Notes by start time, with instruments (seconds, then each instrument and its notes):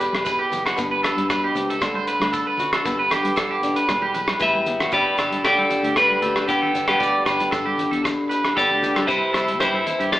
Already playing: steel-string acoustic guitar E2 E3 G3 B3 G4
0.00 clean electric guitar B4, closed hi-hat, maracas
0.13 fingered electric bass E1, cross-stick, closed hi-hat, high conga, low agogo
0.25 steel-string acoustic guitar E3, clean electric guitar B4, kick, closed hi-hat, maracas
0.39 clean electric guitar G4
0.52 fingered electric bass F#1, steel-string acoustic guitar B3, closed hi-hat, low conga, maracas
0.66 clean electric guitar F#4, cross-stick, closed hi-hat, low agogo
0.76 fingered electric bass G1, steel-string acoustic guitar G2 B3, kick, closed hi-hat, maracas
0.91 clean electric guitar B4
1.03 clean electric guitar A4, cross-stick, closed hi-hat, low agogo, maracas
1.17 fingered electric bass G2, closed hi-hat, high conga
1.30 steel-string acoustic guitar B2, clean electric guitar B4, kick, cross-stick, closed hi-hat, low agogo, maracas
1.44 clean electric guitar G4
1.55 fingered electric bass C#2, steel-string acoustic guitar C3, closed hi-hat, low conga, maracas
1.70 clean electric guitar A4, closed hi-hat
1.81 fingered electric bass D2, steel-string acoustic guitar D3 D4, kick, cross-stick, closed hi-hat, high conga, low agogo, maracas
1.94 clean electric guitar C5, high conga
2.07 clean electric guitar B4, closed hi-hat, maracas
2.20 fingered electric bass D2, cross-stick, closed hi-hat, high conga, low agogo
2.33 clean electric guitar A4, kick, closed hi-hat, maracas
2.47 clean electric guitar B4
2.58 fingered electric bass D3, steel-string acoustic guitar F#4, closed hi-hat, low conga, maracas
2.73 clean electric guitar A4, cross-stick, closed hi-hat, low agogo
2.85 fingered electric bass G1, steel-string acoustic guitar G2 B3, kick, closed hi-hat, maracas
2.99 clean electric guitar B4
3.10 clean electric guitar G4, cross-stick, closed hi-hat, low conga, low agogo, maracas
3.23 fingered electric bass G2, closed hi-hat, high conga
3.36 steel-string acoustic guitar D3, clean electric guitar A4, kick, cross-stick, closed hi-hat, low agogo, maracas
3.51 clean electric guitar G4
3.62 fingered electric bass E1, steel-string acoustic guitar D4, closed hi-hat, maracas
3.76 clean electric guitar B4, closed hi-hat
3.88 fingered electric bass E1, steel-string acoustic guitar E2 G3, kick, cross-stick, closed hi-hat, high conga, low agogo, maracas
4.02 clean electric guitar G4, high conga
4.14 fingered electric bass B1, clean electric guitar B4, closed hi-hat, low conga, maracas
4.28 cross-stick, closed hi-hat, high conga, low agogo
4.39 fingered electric bass A1, steel-string acoustic guitar E3, clean electric guitar G4 B4 E5, kick, closed hi-hat, high conga, maracas
4.55 high conga
4.66 fingered electric bass G1, steel-string acoustic guitar B3, closed hi-hat, low conga, maracas
4.80 clean electric guitar F#4, cross-stick, closed hi-hat, low conga, low agogo
4.91 fingered electric bass G1, steel-string acoustic guitar G2, clean electric guitar G4 B4 D5, kick, closed hi-hat, maracas
5.18 fingered electric bass G1, steel-string acoustic guitar D4, clean electric guitar A4, cross-stick, closed hi-hat, low agogo, maracas
5.32 closed hi-hat, high conga
5.44 fingered electric bass D2, steel-string acoustic guitar D3, clean electric guitar G4 D5, kick, cross-stick, closed hi-hat, low agogo, maracas
5.58 clean electric guitar A4, high conga
5.69 steel-string acoustic guitar G4, closed hi-hat, low conga, maracas
5.83 fingered electric bass D2, clean electric guitar G4, closed hi-hat
5.96 steel-string acoustic guitar G2 D4, clean electric guitar D4 B4, kick, cross-stick, closed hi-hat, low agogo, maracas
6.10 high conga
6.22 fingered electric bass D2, steel-string acoustic guitar G4, clean electric guitar A4, closed hi-hat
6.36 cross-stick, closed hi-hat, low agogo
6.48 steel-string acoustic guitar D3, clean electric guitar B3 G4, muted steel-string acoustic guitar stroke, kick, closed hi-hat, maracas
6.62 clean electric guitar A4, low conga
6.73 fingered electric bass G1, steel-string acoustic guitar D4, closed hi-hat, low conga, maracas
6.88 clean electric guitar B3 G4 B4, cross-stick, closed hi-hat, high conga, low agogo
6.99 fingered electric bass D2, steel-string acoustic guitar G2, clean electric guitar D5, kick, closed hi-hat, maracas
7.25 fingered electric bass G1, steel-string acoustic guitar D4, clean electric guitar B4, cross-stick, closed hi-hat, low agogo, maracas
7.40 closed hi-hat, high conga
7.51 fingered electric bass G1, steel-string acoustic guitar D3, clean electric guitar A4, kick, cross-stick, closed hi-hat, low agogo, maracas
7.66 clean electric guitar G4, high conga
7.78 steel-string acoustic guitar G4, closed hi-hat, low conga, maracas
7.91 fingered electric bass E2, clean electric guitar A4, closed hi-hat
8.04 steel-string acoustic guitar G2 D4, muted clean electric guitar stroke, kick, cross-stick, closed hi-hat, low agogo, maracas
8.29 steel-string acoustic guitar G4, clean electric guitar B4, closed hi-hat, maracas
8.45 cross-stick, closed hi-hat, low agogo
8.56 fingered electric bass G1, steel-string acoustic guitar D3 B3, clean electric guitar G4 A4 D5, kick, closed hi-hat, maracas
8.69 fingered electric bass D2, clean electric guitar G4, low conga
8.82 steel-string acoustic guitar G4, closed hi-hat, low conga, maracas
8.95 fingered electric bass G2, clean electric guitar A4, cross-stick, closed hi-hat, high conga, low agogo
9.07 fingered electric bass C2, steel-string acoustic guitar C3, clean electric guitar E4 B4 C5, kick, closed hi-hat, maracas
9.33 fingered electric bass C2, steel-string acoustic guitar C4, clean electric guitar A4, cross-stick, closed hi-hat, low agogo, maracas
9.48 closed hi-hat, high conga
9.59 fingered electric bass G2, steel-string acoustic guitar E3, clean electric guitar E4 G4 C5, kick, cross-stick, closed hi-hat, low agogo, maracas
9.74 clean electric guitar A4, high conga
9.87 steel-string acoustic guitar E4, closed hi-hat, low conga, maracas
10.00 fingered electric bass G2, clean electric guitar G4, closed hi-hat
10.12 steel-string acoustic guitar G2 C4, clean electric guitar G4 D5, muted clean electric guitar stroke, kick, cross-stick, closed hi-hat, low agogo, maracas